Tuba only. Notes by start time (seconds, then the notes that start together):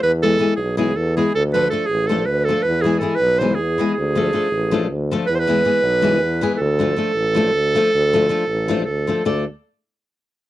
0.03 E2
0.57 B1
0.97 E2
1.35 D2
1.89 A1
2.28 D2
2.66 E2
3.20 B1
3.59 E2
3.97 D2
4.51 A1
4.91 D2
5.29 E2
5.82 B1
6.21 E2
6.61 D2
7.15 A1
7.54 D2
7.94 D2
8.47 A1
8.88 D2
9.26 D2